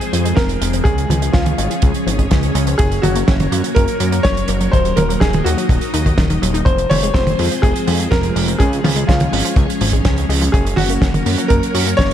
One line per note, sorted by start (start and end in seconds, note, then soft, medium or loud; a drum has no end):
0.00 2.75 F3 medium
0.00 2.75 G#3 medium
0.00 0.84 C4 medium
0.00 0.38 G#4 medium
0.00 0.84 G#4 medium
0.00 0.84 C5 medium
0.00 closed hi-hat medium
0.13 0.33 F2 medium
0.13 0.25 F3 loud
0.13 closed hi-hat medium
0.25 0.37 G#3 medium
0.25 closed hi-hat medium
0.35 0.58 F1 medium
0.35 0.47 C4 medium
0.35 0.86 A#4 medium
0.35 kick loud
0.35 snare loud
0.35 closed hi-hat medium
0.49 closed hi-hat medium
0.61 0.82 F1 loud
0.61 0.71 G#3 medium
0.61 closed hi-hat medium
0.73 0.85 F3 medium
0.73 closed hi-hat medium
0.84 1.06 C#2 loud
0.84 0.95 C#3 medium
0.84 4.69 C#4 medium
0.84 1.35 G#4 medium
0.84 2.77 G#4 medium
0.84 4.69 C#5 medium
0.84 kick loud
0.84 closed hi-hat medium
0.98 closed hi-hat medium
1.10 1.30 C#2 medium
1.10 1.21 F3 loud
1.10 closed hi-hat medium
1.10 high tom medium
1.22 1.33 G#3 medium
1.22 closed hi-hat medium
1.32 1.55 C#2 medium
1.32 1.43 C#4 medium
1.32 1.78 F4 medium
1.32 kick loud
1.32 snare loud
1.32 closed hi-hat medium
1.46 closed hi-hat medium
1.46 high tom medium
1.58 1.69 G#1 medium
1.58 1.68 G#3 medium
1.58 closed hi-hat medium
1.70 1.82 F3 medium
1.70 closed hi-hat medium
1.82 1.93 C#2 loud
1.82 1.92 C#3 medium
1.82 kick loud
1.82 closed hi-hat medium
1.94 closed hi-hat medium
2.07 2.27 G#1 medium
2.07 2.18 F3 loud
2.07 closed hi-hat medium
2.19 2.30 G#3 medium
2.19 kick medium
2.19 closed hi-hat medium
2.31 2.52 C#2 medium
2.31 2.40 C#4 medium
2.31 kick loud
2.31 snare loud
2.31 closed hi-hat medium
2.43 closed hi-hat medium
2.55 2.75 C#2 loud
2.55 2.64 G#3 medium
2.55 closed hi-hat medium
2.67 2.79 F3 medium
2.67 closed hi-hat medium
2.78 3.00 F#1 medium
2.78 2.89 C#3 medium
2.78 6.63 F#3 medium
2.78 4.71 A#3 medium
2.78 3.01 G#4 medium
2.78 6.63 A#4 medium
2.78 kick loud
2.78 closed hi-hat medium
2.92 closed hi-hat soft
3.02 3.24 F#1 medium
3.02 3.15 F#3 loud
3.02 3.77 F#4 medium
3.02 closed hi-hat medium
3.02 high tom medium
3.15 3.27 A#3 medium
3.15 closed hi-hat medium
3.28 3.48 F#1 medium
3.28 3.37 C#4 medium
3.28 kick loud
3.28 snare loud
3.28 closed hi-hat medium
3.40 closed hi-hat medium
3.40 high tom medium
3.52 3.62 F#2 medium
3.52 3.61 A#3 medium
3.52 closed hi-hat medium
3.64 3.75 F#3 medium
3.64 closed hi-hat medium
3.75 3.86 F#1 medium
3.75 3.85 C#3 medium
3.75 4.20 A#4 loud
3.75 kick loud
3.75 closed hi-hat medium
3.88 closed hi-hat medium
4.00 4.21 F#2 medium
4.00 4.12 F#3 loud
4.00 closed hi-hat medium
4.12 4.24 A#3 medium
4.12 closed hi-hat medium
4.23 4.45 F#1 medium
4.23 4.34 C#4 medium
4.23 4.74 C#5 loud
4.23 kick loud
4.23 snare loud
4.23 closed hi-hat medium
4.37 closed hi-hat medium
4.48 4.69 F#1 loud
4.48 4.58 A#3 medium
4.48 closed hi-hat medium
4.61 4.72 F#3 medium
4.61 closed hi-hat soft
4.72 4.93 D#1 loud
4.72 4.82 D#3 medium
4.72 6.64 A#3 medium
4.72 6.65 D#4 medium
4.72 4.97 C5 loud
4.72 6.64 D#5 medium
4.72 kick loud
4.72 closed hi-hat medium
4.85 closed hi-hat soft
4.96 5.17 D#1 medium
4.96 5.08 F#3 loud
4.96 5.19 A#4 medium
4.96 closed hi-hat medium
4.96 high tom medium
5.09 5.21 A#3 medium
5.09 closed hi-hat medium
5.20 5.42 D#1 medium
5.20 5.31 D#4 medium
5.20 5.46 G#4 medium
5.20 kick loud
5.20 snare loud
5.20 closed hi-hat medium
5.33 closed hi-hat medium
5.33 high tom medium
5.44 5.56 D#2 medium
5.44 5.55 A#3 medium
5.44 6.38 F#4 medium
5.44 closed hi-hat medium
5.57 5.69 F#3 medium
5.57 closed hi-hat medium
5.69 5.80 D#1 loud
5.69 5.79 D#3 medium
5.69 kick loud
5.69 closed hi-hat medium
5.81 closed hi-hat medium
5.94 6.14 D#2 medium
5.94 6.03 D#4 medium
5.94 closed hi-hat medium
6.06 6.11 D#3 medium
6.06 kick medium
6.06 closed hi-hat medium
6.18 6.38 D#1 medium
6.18 6.27 D#3 loud
6.18 kick loud
6.18 snare loud
6.18 closed hi-hat medium
6.30 6.42 D#3 medium
6.30 closed hi-hat medium
6.42 6.63 D#1 loud
6.42 6.54 F#3 medium
6.42 closed hi-hat medium
6.54 6.60 D#4 loud
6.54 closed hi-hat soft
6.65 6.87 F1 loud
6.65 6.76 C3 medium
6.65 10.50 F3 medium
6.65 10.50 G#3 medium
6.65 8.58 C4 medium
6.65 8.58 G#4 medium
6.65 6.91 C5 loud
6.65 8.58 C5 medium
6.65 kick loud
6.65 closed hi-hat medium
6.78 closed hi-hat medium
6.90 7.11 F1 medium
6.90 7.02 F3 medium
6.90 7.15 C#5 loud
6.90 open hi-hat medium
6.90 high tom medium
7.03 7.14 G#3 medium
7.03 closed hi-hat soft
7.14 7.35 F1 medium
7.14 7.24 C4 medium
7.14 7.59 C5 loud
7.14 kick loud
7.14 snare loud
7.14 closed hi-hat medium
7.27 closed hi-hat medium
7.27 high tom medium
7.39 7.49 F2 medium
7.39 7.48 G#3 medium
7.39 open hi-hat loud
7.51 7.63 F3 medium
7.51 closed hi-hat medium
7.62 7.73 F1 medium
7.62 7.73 C3 medium
7.62 8.08 G#4 medium
7.62 kick loud
7.62 closed hi-hat medium
7.76 closed hi-hat medium
7.87 8.08 F2 medium
7.87 7.99 F3 loud
7.87 open hi-hat medium
7.99 8.11 G#3 medium
7.99 closed hi-hat medium
8.11 8.32 F1 medium
8.11 8.21 C4 medium
8.11 8.61 A#4 loud
8.11 kick loud
8.11 snare loud
8.11 closed hi-hat medium
8.23 closed hi-hat medium
8.36 8.56 F1 loud
8.36 8.45 G#3 medium
8.36 open hi-hat medium
8.48 8.59 F3 medium
8.48 closed hi-hat medium
8.59 8.80 C#2 loud
8.59 8.69 C#3 medium
8.59 12.14 C#4 medium
8.59 9.09 G#4 medium
8.59 10.52 G#4 medium
8.59 10.52 C#5 loud
8.59 kick loud
8.59 closed hi-hat medium
8.73 closed hi-hat soft
8.84 9.04 C#2 medium
8.84 8.96 F3 loud
8.84 open hi-hat loud
8.84 high tom medium
8.96 9.08 G#3 medium
8.96 closed hi-hat medium
9.07 9.29 C#2 medium
9.07 9.18 C#4 medium
9.07 9.53 F4 medium
9.07 kick loud
9.07 snare loud
9.07 closed hi-hat medium
9.20 closed hi-hat medium
9.20 high tom medium
9.32 9.43 G#1 medium
9.32 9.42 G#3 medium
9.32 open hi-hat loud
9.45 9.56 F3 medium
9.45 closed hi-hat medium
9.56 9.67 C#2 medium
9.56 9.66 C#3 medium
9.56 kick loud
9.56 closed hi-hat medium
9.70 closed hi-hat medium
9.81 10.01 G#1 medium
9.81 9.92 F3 medium
9.81 open hi-hat loud
9.92 10.05 G#3 medium
9.92 kick medium
9.92 closed hi-hat medium
10.05 10.26 C#2 medium
10.05 10.15 C#4 medium
10.05 kick loud
10.05 snare loud
10.05 closed hi-hat medium
10.18 closed hi-hat medium
10.29 10.50 C#2 loud
10.29 10.39 G#3 medium
10.29 open hi-hat loud
10.41 10.53 F3 medium
10.41 closed hi-hat medium
10.52 10.74 F#1 loud
10.52 10.63 C#3 medium
10.52 12.14 F#3 medium
10.52 12.14 A#3 medium
10.52 10.78 G#4 medium
10.52 12.14 A#4 medium
10.52 12.14 C#5 medium
10.52 kick loud
10.52 closed hi-hat medium
10.66 closed hi-hat medium
10.76 10.98 F#1 medium
10.76 10.89 F#3 loud
10.76 11.52 F#4 loud
10.76 open hi-hat loud
10.76 high tom medium
10.89 11.01 A#3 medium
10.89 closed hi-hat medium
11.02 11.22 F#1 medium
11.02 11.11 C#4 medium
11.02 kick loud
11.02 snare loud
11.02 closed hi-hat medium
11.14 closed hi-hat medium
11.14 high tom medium
11.26 11.36 F#2 medium
11.26 11.35 A#3 medium
11.26 open hi-hat loud
11.38 11.50 F#3 medium
11.38 closed hi-hat medium
11.48 11.61 F#1 loud
11.48 11.60 C#3 medium
11.48 11.94 A#4 loud
11.48 kick loud
11.48 closed hi-hat medium
11.63 closed hi-hat medium
11.74 11.95 F#2 medium
11.74 11.86 F#3 loud
11.74 open hi-hat loud
11.87 11.98 A#3 medium
11.87 closed hi-hat medium
11.97 12.14 F#1 medium
11.97 12.08 C#4 medium
11.97 12.14 C#5 loud
11.97 kick loud
11.97 snare loud
11.97 closed hi-hat medium